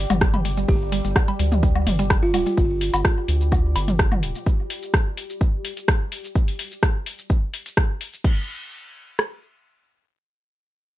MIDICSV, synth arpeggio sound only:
0, 0, Header, 1, 2, 480
1, 0, Start_track
1, 0, Tempo, 472441
1, 697, Time_signature, 4, 2, 24, 8
1, 11150, End_track
2, 0, Start_track
2, 0, Title_t, "Synth arpeggio sound"
2, 0, Program_c, 0, 84
2, 103, Note_on_c, 0, 55, 101
2, 148, Note_off_c, 0, 55, 0
2, 216, Note_on_c, 0, 55, 85
2, 293, Note_off_c, 0, 55, 0
2, 456, Note_on_c, 0, 55, 76
2, 507, Note_off_c, 0, 55, 0
2, 583, Note_on_c, 0, 55, 81
2, 610, Note_off_c, 0, 55, 0
2, 697, Note_on_c, 0, 55, 79
2, 747, Note_off_c, 0, 55, 0
2, 936, Note_on_c, 0, 55, 108
2, 987, Note_off_c, 0, 55, 0
2, 1063, Note_on_c, 0, 55, 77
2, 1109, Note_off_c, 0, 55, 0
2, 1303, Note_on_c, 0, 55, 94
2, 1349, Note_off_c, 0, 55, 0
2, 1417, Note_on_c, 0, 55, 77
2, 1468, Note_off_c, 0, 55, 0
2, 1657, Note_on_c, 0, 55, 97
2, 1707, Note_off_c, 0, 55, 0
2, 1783, Note_on_c, 0, 55, 77
2, 1829, Note_off_c, 0, 55, 0
2, 2023, Note_on_c, 0, 55, 105
2, 2069, Note_off_c, 0, 55, 0
2, 2137, Note_on_c, 0, 55, 86
2, 2188, Note_off_c, 0, 55, 0
2, 2377, Note_on_c, 0, 55, 102
2, 2427, Note_off_c, 0, 55, 0
2, 2503, Note_on_c, 0, 55, 79
2, 2549, Note_off_c, 0, 55, 0
2, 11150, End_track
0, 0, End_of_file